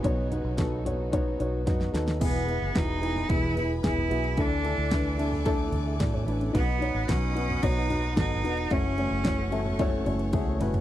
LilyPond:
<<
  \new Staff \with { instrumentName = "String section" } { \time 4/4 \key e \major \tempo 4 = 111 << { <cis fis b fis'>1 | <gis' b' b''>1 | <a' d'' d'''>1 | <b' dis'' dis'''>1 |
<a' cis'' cis'''>1 | } \\ { dis'1 | gis''1~ | gis''1 | fis''1~ |
fis''1 | } >> }
  \new Staff \with { instrumentName = "Upright piano" } { \time 4/4 \key e \major << { r1 | b,4. r2 r8 | a,4. r4 r16 <gis' e''>16 <fis' d''>16 <e' cis''>16 <d' b'>16 <cis' a'>16~ | <cis' a'>16 r2. r8. |
cis4. e''8 fis''8 gis''8 a''4 | } \\ { <b dis' fis' cis''>8 <b dis' fis' b'>8 <b dis' fis' a'>8 <b dis' fis' cis''>8 <b dis' fis' cis''>8 <b dis' fis' cis''>8 <b dis' fis' dis''>8 <b dis' fis' a'>8 | <b e' gis'>8 <b e' b'>8 <b e' fis'>8 <b e' gis'>8 <b e' b'>8 <b e' b'>8 <b e' gis'>8 <b e' fis'>8 | <d' e' a'>8 <d' e' a'>8 <d' e' b'>8 <d' e' a'>8 <d' e' a'>8 r4. | <dis' fis' b'>8 <dis' fis' cis''>8 <dis' fis' b'>8 <dis' fis' b'>8 <dis' fis' cis''>8 <dis' fis' b'>8 <dis' fis' a'>8 <dis' fis' b'>8 |
<a cis' e' fis' cis''>8 <a cis' e' fis' cis''>8 <a cis' e' fis' cis''>8 <a cis' e' fis' a'>8 <a cis' e' fis' cis''>8 <a cis' e' fis' cis''>8 <a cis' e' fis' gis'>8 <a cis' e' fis' b'>8 | } >> }
  \new Staff \with { instrumentName = "Cello" } { \time 4/4 \key e \major r1 | b4 dis'4 e'8 e'8 e'4 | d'2 r2 | b4 cis'4 dis'4 dis'4 |
cis'2 r2 | }
  \new Staff \with { instrumentName = "Steel-string acoustic guitar" } { \time 4/4 \key e \major <b dis' fis' cis''>8 <dis' fis' cis''>8 <b dis' fis' cis''>8 <dis' fis' cis''>8 <b dis' fis' cis''>8 <dis' fis' cis''>8 <b dis' fis' cis''>8 <dis' fis' cis''>8 | <e, b, e b e' gis'>8 <e b e' gis'>8 <e b e' gis'>8 <e b e' gis'>8 <e, b, e b e' gis'>8 <e b e' gis'>8 <e b e' gis'>8 <e b e' gis'>8 | <d e a d' e'>8 <a e'>8 <e a d' e'>8 <a d' e'>8 <d e a d' e'>8 <a d' e'>8 <e a d' e'>8 <a d' e'>8 | <b, fis b dis' fis'>8 <b dis' fis'>8 <fis b dis' fis'>8 <b dis' fis'>8 <b, fis b dis' fis'>8 <b dis' fis'>8 <fis b dis' fis'>8 <b dis' fis'>8 |
<fis, cis e a cis' fis'>8 <e a cis' fis'>8 <e a cis' fis'>8 <e a cis' fis'>8 <fis, cis e a cis' fis'>8 <e a cis' fis'>8 <e a cis' fis'>8 <e a cis' fis'>8 | }
  \new Staff \with { instrumentName = "Fingered electric bass" } { \clef bass \time 4/4 \key e \major b,,8. b,,4.~ b,,16 b,,8 fis,8 dis,8 | e,,8. fis,,16 e,,4 e,,4 e,,8 b,,8 | d,8. d,4.~ d,16 d,8 a,8 a,,8 | b,,8. a,,16 b,,4 b,,4 gis,,8 e,,8 |
fis,,8. fis,,4.~ fis,,16 fis,,8 cis,8 fis,,8 | }
  \new DrumStaff \with { instrumentName = "Drums" } \drummode { \time 4/4 <hh bd>8 <hh tomfh>8 <hh bd sn>8 <hh tomfh>8 <hh bd>8 hh8 <hh bd sn>16 sn16 <hh sn>16 sn16 | <cymc bd cymr>8 cymr8 <bd cymr sn>8 cymr16 tomfh16 <bd cymr>8 <cymr tomfh>8 <bd cymr sn>16 tomfh16 cymr16 cymr16 | <bd cymr>8 cymr8 <bd cymr sn>8 cymr16 tomfh16 <bd cymr>8 <cymr tomfh>8 <bd cymr sn>16 tomfh16 cymr16 cymr16 | <bd cymr>8 cymr8 <bd cymr sn>8 cymr16 tomfh16 <bd cymr>8 <cymr tomfh>8 <bd cymr sn>16 tomfh16 cymr16 cymr16 |
<bd cymr>8 cymr8 <bd cymr sn>8 cymr16 tomfh16 <bd cymr>8 <cymr tomfh>16 cymr16 <bd cymr tommh>8 <cymr toml>16 <cymr tomfh>16 | }
>>